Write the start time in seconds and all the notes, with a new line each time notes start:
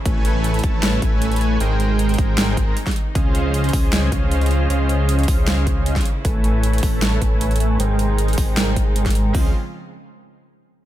Already playing: C#3 E3 A3 E4
0.06 A1 A3 A4 B4 C#5 G#5, kick, closed hi-hat
0.25 closed hi-hat
0.44 closed hi-hat
0.54 closed hi-hat
0.59 closed hi-hat
0.64 A1 A3 A4 B4 C#5 A5, kick, closed hi-hat
0.83 snare, closed hi-hat
1.02 A1 A3 A4 B4 C#5 G#5, kick, closed hi-hat
1.22 closed hi-hat
1.32 closed hi-hat
1.36 closed hi-hat
1.41 closed hi-hat
1.60 G#1 C3 D#3 G#3 D#4 G#4 A#4 C5 G5, closed hi-hat
1.80 closed hi-hat
1.99 closed hi-hat
2.09 closed hi-hat
2.14 closed hi-hat
2.18 G#1 G#3 G#4 A#4, kick, closed hi-hat
2.38 snare, closed hi-hat
2.57 kick, closed hi-hat
2.67 G#1 G#3 G#4 A#4 C5 A#5
2.77 closed hi-hat
2.87 kick, snare, closed hi-hat
2.91 closed hi-hat
2.96 closed hi-hat
3.15 C#2 C#3 F3 C#4 F4 G#4 C5 D#5 F5, kick, closed hi-hat
3.35 closed hi-hat
3.54 closed hi-hat
3.64 closed hi-hat
3.69 closed hi-hat
3.73 C#2 C#4 G#4 C5 D#5 G#5, kick, open hi-hat
3.93 snare, closed hi-hat
4.12 C#2 C#4 G#4 C5 D#5 F5, kick, closed hi-hat
4.31 closed hi-hat
4.41 closed hi-hat
4.46 closed hi-hat
4.51 closed hi-hat
4.70 C#2 C#4 G#4 C5 D#5 F5, closed hi-hat
4.89 closed hi-hat
5.09 closed hi-hat
5.19 closed hi-hat
5.23 closed hi-hat
5.28 C#2 C#4 C5 F5, kick, open hi-hat
5.48 snare, closed hi-hat
5.67 kick, closed hi-hat
5.86 closed hi-hat
5.96 kick, snare, closed hi-hat
6.01 closed hi-hat
6.05 E3 A3 E4, closed hi-hat
6.25 A1 A3 A4 B4 C#5 G#5, kick, closed hi-hat
6.44 closed hi-hat
6.63 closed hi-hat
6.73 closed hi-hat
6.78 closed hi-hat
6.83 A1 A3 A4 A5, kick, open hi-hat
7.02 snare, closed hi-hat
7.22 A1 A3 A4 B4 C#5 G#5, kick, closed hi-hat
7.41 closed hi-hat
7.51 closed hi-hat
7.56 closed hi-hat
7.60 closed hi-hat
7.80 G#1 C3 D#3 G#3 D#4 G#4 A#4 C5 G5, closed hi-hat
7.99 closed hi-hat
8.18 closed hi-hat
8.28 closed hi-hat
8.33 closed hi-hat
8.38 G#1 G#3 G#4 A#4 C5, kick, open hi-hat
8.57 snare, closed hi-hat
8.76 kick, closed hi-hat
8.96 closed hi-hat
9.06 kick, snare, closed hi-hat
9.10 closed hi-hat
9.15 closed hi-hat
9.34 C#2 C#3 F3 G#3 C4 C#4 F4 G#4 C5 D#5 F5, kick, open hi-hat